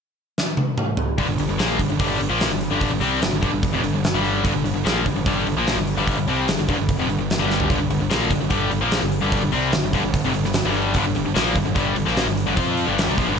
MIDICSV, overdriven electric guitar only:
0, 0, Header, 1, 2, 480
1, 0, Start_track
1, 0, Tempo, 407056
1, 1390, Time_signature, 4, 2, 24, 8
1, 15793, End_track
2, 0, Start_track
2, 0, Title_t, "Overdriven electric guitar"
2, 0, Program_c, 0, 29
2, 1393, Note_on_c, 0, 43, 85
2, 1403, Note_on_c, 0, 50, 94
2, 1500, Note_off_c, 0, 43, 0
2, 1506, Note_off_c, 0, 50, 0
2, 1514, Note_on_c, 0, 43, 56
2, 1520, Note_on_c, 0, 50, 65
2, 1632, Note_off_c, 0, 43, 0
2, 1636, Note_off_c, 0, 50, 0
2, 1647, Note_on_c, 0, 43, 62
2, 1650, Note_on_c, 0, 50, 62
2, 1744, Note_off_c, 0, 43, 0
2, 1746, Note_off_c, 0, 50, 0
2, 1758, Note_on_c, 0, 43, 55
2, 1760, Note_on_c, 0, 50, 69
2, 1863, Note_off_c, 0, 50, 0
2, 1868, Note_on_c, 0, 46, 72
2, 1869, Note_on_c, 0, 53, 88
2, 1875, Note_off_c, 0, 43, 0
2, 1878, Note_on_c, 0, 58, 97
2, 2103, Note_off_c, 0, 46, 0
2, 2103, Note_off_c, 0, 53, 0
2, 2107, Note_on_c, 0, 43, 63
2, 2108, Note_off_c, 0, 58, 0
2, 2112, Note_on_c, 0, 50, 65
2, 2211, Note_off_c, 0, 43, 0
2, 2223, Note_off_c, 0, 50, 0
2, 2225, Note_on_c, 0, 43, 67
2, 2238, Note_on_c, 0, 50, 71
2, 2334, Note_off_c, 0, 43, 0
2, 2347, Note_off_c, 0, 50, 0
2, 2348, Note_on_c, 0, 43, 91
2, 2361, Note_on_c, 0, 50, 97
2, 2364, Note_on_c, 0, 55, 98
2, 2576, Note_off_c, 0, 43, 0
2, 2577, Note_off_c, 0, 50, 0
2, 2590, Note_on_c, 0, 43, 59
2, 2591, Note_off_c, 0, 55, 0
2, 2591, Note_on_c, 0, 50, 73
2, 2695, Note_off_c, 0, 50, 0
2, 2700, Note_on_c, 0, 46, 77
2, 2711, Note_off_c, 0, 43, 0
2, 2714, Note_on_c, 0, 53, 83
2, 2717, Note_on_c, 0, 58, 85
2, 2940, Note_off_c, 0, 46, 0
2, 2945, Note_on_c, 0, 43, 61
2, 2947, Note_off_c, 0, 53, 0
2, 2948, Note_off_c, 0, 58, 0
2, 2950, Note_on_c, 0, 50, 68
2, 3141, Note_off_c, 0, 43, 0
2, 3144, Note_off_c, 0, 50, 0
2, 3185, Note_on_c, 0, 43, 80
2, 3194, Note_on_c, 0, 50, 80
2, 3196, Note_on_c, 0, 55, 86
2, 3413, Note_off_c, 0, 43, 0
2, 3421, Note_off_c, 0, 50, 0
2, 3427, Note_on_c, 0, 43, 67
2, 3428, Note_off_c, 0, 55, 0
2, 3435, Note_on_c, 0, 50, 70
2, 3535, Note_off_c, 0, 50, 0
2, 3539, Note_on_c, 0, 48, 87
2, 3548, Note_on_c, 0, 55, 88
2, 3551, Note_off_c, 0, 43, 0
2, 3552, Note_on_c, 0, 60, 97
2, 3780, Note_off_c, 0, 48, 0
2, 3784, Note_off_c, 0, 55, 0
2, 3784, Note_on_c, 0, 43, 58
2, 3786, Note_off_c, 0, 60, 0
2, 3788, Note_on_c, 0, 50, 65
2, 3888, Note_off_c, 0, 43, 0
2, 3891, Note_off_c, 0, 50, 0
2, 3902, Note_on_c, 0, 43, 61
2, 3905, Note_on_c, 0, 50, 77
2, 4006, Note_off_c, 0, 43, 0
2, 4018, Note_off_c, 0, 50, 0
2, 4020, Note_on_c, 0, 43, 96
2, 4032, Note_on_c, 0, 50, 98
2, 4130, Note_off_c, 0, 43, 0
2, 4134, Note_off_c, 0, 50, 0
2, 4144, Note_on_c, 0, 43, 59
2, 4148, Note_on_c, 0, 50, 69
2, 4342, Note_off_c, 0, 43, 0
2, 4344, Note_off_c, 0, 50, 0
2, 4394, Note_on_c, 0, 41, 95
2, 4400, Note_on_c, 0, 48, 93
2, 4507, Note_off_c, 0, 41, 0
2, 4511, Note_off_c, 0, 48, 0
2, 4524, Note_on_c, 0, 43, 75
2, 4529, Note_on_c, 0, 50, 71
2, 4624, Note_off_c, 0, 43, 0
2, 4633, Note_off_c, 0, 50, 0
2, 4638, Note_on_c, 0, 43, 65
2, 4647, Note_on_c, 0, 50, 66
2, 4829, Note_off_c, 0, 43, 0
2, 4834, Note_off_c, 0, 50, 0
2, 4883, Note_on_c, 0, 43, 88
2, 4884, Note_on_c, 0, 50, 88
2, 4892, Note_on_c, 0, 55, 100
2, 5219, Note_off_c, 0, 43, 0
2, 5223, Note_off_c, 0, 50, 0
2, 5233, Note_on_c, 0, 43, 92
2, 5237, Note_off_c, 0, 55, 0
2, 5237, Note_on_c, 0, 50, 96
2, 5342, Note_off_c, 0, 43, 0
2, 5344, Note_off_c, 0, 50, 0
2, 5356, Note_on_c, 0, 43, 64
2, 5358, Note_on_c, 0, 50, 67
2, 5461, Note_off_c, 0, 43, 0
2, 5461, Note_off_c, 0, 50, 0
2, 5475, Note_on_c, 0, 43, 68
2, 5475, Note_on_c, 0, 50, 69
2, 5574, Note_off_c, 0, 43, 0
2, 5578, Note_off_c, 0, 50, 0
2, 5588, Note_on_c, 0, 43, 64
2, 5592, Note_on_c, 0, 50, 74
2, 5703, Note_off_c, 0, 50, 0
2, 5708, Note_on_c, 0, 46, 85
2, 5712, Note_off_c, 0, 43, 0
2, 5721, Note_on_c, 0, 53, 93
2, 5723, Note_on_c, 0, 58, 96
2, 5945, Note_off_c, 0, 46, 0
2, 5951, Note_off_c, 0, 53, 0
2, 5952, Note_off_c, 0, 58, 0
2, 5971, Note_on_c, 0, 43, 61
2, 5976, Note_on_c, 0, 50, 70
2, 6072, Note_off_c, 0, 43, 0
2, 6077, Note_off_c, 0, 50, 0
2, 6086, Note_on_c, 0, 43, 64
2, 6091, Note_on_c, 0, 50, 74
2, 6197, Note_off_c, 0, 43, 0
2, 6200, Note_off_c, 0, 50, 0
2, 6211, Note_on_c, 0, 43, 96
2, 6214, Note_on_c, 0, 50, 93
2, 6219, Note_on_c, 0, 55, 105
2, 6433, Note_off_c, 0, 43, 0
2, 6438, Note_off_c, 0, 50, 0
2, 6441, Note_off_c, 0, 55, 0
2, 6448, Note_on_c, 0, 43, 67
2, 6452, Note_on_c, 0, 50, 70
2, 6562, Note_off_c, 0, 43, 0
2, 6564, Note_off_c, 0, 50, 0
2, 6573, Note_on_c, 0, 46, 93
2, 6580, Note_on_c, 0, 53, 99
2, 6583, Note_on_c, 0, 58, 87
2, 6796, Note_off_c, 0, 46, 0
2, 6799, Note_on_c, 0, 43, 59
2, 6801, Note_off_c, 0, 53, 0
2, 6801, Note_on_c, 0, 50, 66
2, 6802, Note_off_c, 0, 58, 0
2, 6990, Note_off_c, 0, 43, 0
2, 6991, Note_off_c, 0, 50, 0
2, 7035, Note_on_c, 0, 43, 81
2, 7046, Note_on_c, 0, 50, 81
2, 7051, Note_on_c, 0, 55, 96
2, 7269, Note_off_c, 0, 43, 0
2, 7274, Note_off_c, 0, 50, 0
2, 7277, Note_off_c, 0, 55, 0
2, 7289, Note_on_c, 0, 43, 61
2, 7295, Note_on_c, 0, 50, 66
2, 7398, Note_off_c, 0, 50, 0
2, 7403, Note_off_c, 0, 43, 0
2, 7403, Note_on_c, 0, 48, 91
2, 7410, Note_on_c, 0, 55, 92
2, 7416, Note_on_c, 0, 60, 91
2, 7632, Note_off_c, 0, 48, 0
2, 7636, Note_off_c, 0, 55, 0
2, 7639, Note_off_c, 0, 60, 0
2, 7649, Note_on_c, 0, 43, 59
2, 7655, Note_on_c, 0, 50, 66
2, 7760, Note_off_c, 0, 43, 0
2, 7765, Note_off_c, 0, 50, 0
2, 7774, Note_on_c, 0, 43, 62
2, 7781, Note_on_c, 0, 50, 71
2, 7864, Note_off_c, 0, 43, 0
2, 7875, Note_off_c, 0, 50, 0
2, 7879, Note_on_c, 0, 43, 88
2, 7889, Note_on_c, 0, 50, 96
2, 7981, Note_off_c, 0, 43, 0
2, 7986, Note_off_c, 0, 50, 0
2, 7996, Note_on_c, 0, 43, 62
2, 8000, Note_on_c, 0, 50, 65
2, 8188, Note_off_c, 0, 43, 0
2, 8190, Note_off_c, 0, 50, 0
2, 8239, Note_on_c, 0, 41, 99
2, 8248, Note_on_c, 0, 48, 97
2, 8350, Note_off_c, 0, 41, 0
2, 8355, Note_off_c, 0, 48, 0
2, 8363, Note_on_c, 0, 43, 66
2, 8368, Note_on_c, 0, 50, 75
2, 8463, Note_off_c, 0, 50, 0
2, 8466, Note_off_c, 0, 43, 0
2, 8477, Note_on_c, 0, 50, 68
2, 8480, Note_on_c, 0, 43, 54
2, 8668, Note_off_c, 0, 50, 0
2, 8670, Note_off_c, 0, 43, 0
2, 8713, Note_on_c, 0, 43, 82
2, 8721, Note_on_c, 0, 55, 101
2, 8722, Note_on_c, 0, 50, 84
2, 9064, Note_off_c, 0, 43, 0
2, 9071, Note_off_c, 0, 50, 0
2, 9071, Note_off_c, 0, 55, 0
2, 9078, Note_on_c, 0, 43, 76
2, 9086, Note_on_c, 0, 50, 95
2, 9189, Note_off_c, 0, 43, 0
2, 9193, Note_off_c, 0, 50, 0
2, 9203, Note_on_c, 0, 43, 55
2, 9207, Note_on_c, 0, 50, 61
2, 9307, Note_off_c, 0, 43, 0
2, 9312, Note_off_c, 0, 50, 0
2, 9321, Note_on_c, 0, 43, 60
2, 9326, Note_on_c, 0, 50, 73
2, 9412, Note_off_c, 0, 43, 0
2, 9422, Note_off_c, 0, 50, 0
2, 9426, Note_on_c, 0, 43, 57
2, 9436, Note_on_c, 0, 50, 67
2, 9544, Note_off_c, 0, 50, 0
2, 9549, Note_on_c, 0, 46, 78
2, 9551, Note_off_c, 0, 43, 0
2, 9555, Note_on_c, 0, 53, 84
2, 9565, Note_on_c, 0, 58, 92
2, 9784, Note_off_c, 0, 46, 0
2, 9788, Note_off_c, 0, 53, 0
2, 9790, Note_on_c, 0, 43, 58
2, 9792, Note_off_c, 0, 58, 0
2, 9793, Note_on_c, 0, 50, 75
2, 9898, Note_off_c, 0, 43, 0
2, 9898, Note_off_c, 0, 50, 0
2, 9912, Note_on_c, 0, 43, 68
2, 9912, Note_on_c, 0, 50, 67
2, 10007, Note_off_c, 0, 43, 0
2, 10008, Note_off_c, 0, 50, 0
2, 10021, Note_on_c, 0, 43, 91
2, 10022, Note_on_c, 0, 50, 94
2, 10032, Note_on_c, 0, 55, 105
2, 10249, Note_off_c, 0, 43, 0
2, 10255, Note_off_c, 0, 50, 0
2, 10263, Note_on_c, 0, 43, 66
2, 10266, Note_off_c, 0, 55, 0
2, 10269, Note_on_c, 0, 50, 73
2, 10382, Note_off_c, 0, 50, 0
2, 10387, Note_on_c, 0, 46, 75
2, 10388, Note_off_c, 0, 43, 0
2, 10391, Note_on_c, 0, 53, 78
2, 10396, Note_on_c, 0, 58, 81
2, 10619, Note_on_c, 0, 43, 55
2, 10623, Note_off_c, 0, 46, 0
2, 10625, Note_off_c, 0, 53, 0
2, 10627, Note_off_c, 0, 58, 0
2, 10628, Note_on_c, 0, 50, 68
2, 10818, Note_off_c, 0, 43, 0
2, 10822, Note_off_c, 0, 50, 0
2, 10859, Note_on_c, 0, 43, 79
2, 10865, Note_on_c, 0, 50, 92
2, 10872, Note_on_c, 0, 55, 91
2, 11087, Note_off_c, 0, 43, 0
2, 11098, Note_off_c, 0, 50, 0
2, 11101, Note_on_c, 0, 43, 61
2, 11105, Note_off_c, 0, 55, 0
2, 11112, Note_on_c, 0, 50, 71
2, 11222, Note_off_c, 0, 50, 0
2, 11227, Note_off_c, 0, 43, 0
2, 11227, Note_on_c, 0, 48, 90
2, 11228, Note_on_c, 0, 55, 93
2, 11237, Note_on_c, 0, 60, 93
2, 11459, Note_on_c, 0, 43, 59
2, 11462, Note_off_c, 0, 48, 0
2, 11463, Note_off_c, 0, 55, 0
2, 11467, Note_off_c, 0, 60, 0
2, 11469, Note_on_c, 0, 50, 62
2, 11585, Note_off_c, 0, 43, 0
2, 11587, Note_off_c, 0, 50, 0
2, 11598, Note_on_c, 0, 43, 60
2, 11601, Note_on_c, 0, 50, 74
2, 11702, Note_off_c, 0, 43, 0
2, 11712, Note_off_c, 0, 50, 0
2, 11716, Note_on_c, 0, 43, 86
2, 11726, Note_on_c, 0, 50, 97
2, 11827, Note_off_c, 0, 43, 0
2, 11828, Note_off_c, 0, 50, 0
2, 11839, Note_on_c, 0, 43, 65
2, 11842, Note_on_c, 0, 50, 74
2, 12027, Note_off_c, 0, 43, 0
2, 12029, Note_off_c, 0, 50, 0
2, 12080, Note_on_c, 0, 41, 89
2, 12089, Note_on_c, 0, 48, 101
2, 12188, Note_off_c, 0, 41, 0
2, 12192, Note_off_c, 0, 48, 0
2, 12195, Note_on_c, 0, 43, 65
2, 12197, Note_on_c, 0, 50, 77
2, 12310, Note_off_c, 0, 43, 0
2, 12314, Note_off_c, 0, 50, 0
2, 12324, Note_on_c, 0, 43, 55
2, 12327, Note_on_c, 0, 50, 67
2, 12509, Note_off_c, 0, 43, 0
2, 12510, Note_off_c, 0, 50, 0
2, 12559, Note_on_c, 0, 43, 91
2, 12566, Note_on_c, 0, 50, 89
2, 12574, Note_on_c, 0, 55, 97
2, 12907, Note_off_c, 0, 43, 0
2, 12911, Note_off_c, 0, 50, 0
2, 12915, Note_off_c, 0, 55, 0
2, 12921, Note_on_c, 0, 43, 84
2, 12931, Note_on_c, 0, 50, 102
2, 13024, Note_off_c, 0, 43, 0
2, 13033, Note_off_c, 0, 50, 0
2, 13038, Note_on_c, 0, 43, 61
2, 13046, Note_on_c, 0, 50, 75
2, 13139, Note_off_c, 0, 43, 0
2, 13148, Note_off_c, 0, 50, 0
2, 13153, Note_on_c, 0, 43, 54
2, 13162, Note_on_c, 0, 50, 72
2, 13255, Note_off_c, 0, 43, 0
2, 13263, Note_off_c, 0, 50, 0
2, 13270, Note_on_c, 0, 43, 61
2, 13278, Note_on_c, 0, 50, 71
2, 13372, Note_off_c, 0, 50, 0
2, 13376, Note_on_c, 0, 46, 79
2, 13385, Note_on_c, 0, 53, 87
2, 13389, Note_off_c, 0, 43, 0
2, 13389, Note_on_c, 0, 58, 98
2, 13614, Note_off_c, 0, 46, 0
2, 13618, Note_on_c, 0, 43, 70
2, 13619, Note_on_c, 0, 50, 70
2, 13620, Note_off_c, 0, 53, 0
2, 13622, Note_off_c, 0, 58, 0
2, 13723, Note_off_c, 0, 43, 0
2, 13732, Note_off_c, 0, 50, 0
2, 13737, Note_on_c, 0, 43, 58
2, 13746, Note_on_c, 0, 50, 69
2, 13836, Note_off_c, 0, 43, 0
2, 13843, Note_off_c, 0, 50, 0
2, 13850, Note_on_c, 0, 43, 94
2, 13857, Note_on_c, 0, 50, 99
2, 13861, Note_on_c, 0, 55, 107
2, 14080, Note_off_c, 0, 43, 0
2, 14086, Note_off_c, 0, 50, 0
2, 14094, Note_on_c, 0, 43, 66
2, 14097, Note_off_c, 0, 55, 0
2, 14100, Note_on_c, 0, 50, 81
2, 14211, Note_off_c, 0, 50, 0
2, 14216, Note_on_c, 0, 46, 85
2, 14221, Note_off_c, 0, 43, 0
2, 14221, Note_on_c, 0, 53, 81
2, 14221, Note_on_c, 0, 58, 90
2, 14447, Note_off_c, 0, 46, 0
2, 14450, Note_on_c, 0, 43, 58
2, 14452, Note_on_c, 0, 50, 74
2, 14457, Note_off_c, 0, 53, 0
2, 14457, Note_off_c, 0, 58, 0
2, 14651, Note_off_c, 0, 43, 0
2, 14652, Note_off_c, 0, 50, 0
2, 14692, Note_on_c, 0, 43, 76
2, 14699, Note_on_c, 0, 50, 90
2, 14802, Note_off_c, 0, 50, 0
2, 14807, Note_on_c, 0, 53, 99
2, 14813, Note_off_c, 0, 43, 0
2, 14816, Note_on_c, 0, 60, 103
2, 14817, Note_on_c, 0, 65, 98
2, 15167, Note_on_c, 0, 43, 94
2, 15170, Note_off_c, 0, 53, 0
2, 15174, Note_off_c, 0, 60, 0
2, 15175, Note_off_c, 0, 65, 0
2, 15175, Note_on_c, 0, 50, 91
2, 15179, Note_on_c, 0, 55, 91
2, 15410, Note_off_c, 0, 43, 0
2, 15412, Note_off_c, 0, 55, 0
2, 15414, Note_off_c, 0, 50, 0
2, 15420, Note_on_c, 0, 48, 81
2, 15426, Note_on_c, 0, 55, 88
2, 15528, Note_off_c, 0, 48, 0
2, 15533, Note_on_c, 0, 46, 81
2, 15537, Note_off_c, 0, 55, 0
2, 15541, Note_on_c, 0, 53, 92
2, 15653, Note_off_c, 0, 46, 0
2, 15657, Note_off_c, 0, 53, 0
2, 15658, Note_on_c, 0, 43, 93
2, 15669, Note_on_c, 0, 50, 92
2, 15774, Note_off_c, 0, 50, 0
2, 15775, Note_off_c, 0, 43, 0
2, 15793, End_track
0, 0, End_of_file